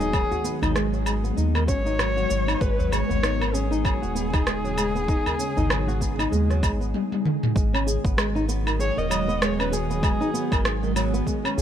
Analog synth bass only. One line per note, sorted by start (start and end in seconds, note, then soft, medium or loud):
0.00 0.24 D#1 medium
0.62 1.32 G#1 medium
1.37 1.70 D#2 medium
1.68 2.25 G#1 medium
2.30 2.55 G#1 medium
2.61 3.03 G#1 loud
3.10 3.96 G#1 medium
4.03 5.20 D#1 medium
5.57 6.27 G#1 medium
6.32 6.64 D#2 medium
6.63 6.94 G#1 medium
7.56 7.98 G#1 loud
8.05 8.91 G#1 medium
8.97 10.14 D#1 medium
10.52 11.22 G#1 medium
11.58 11.62 C#2 medium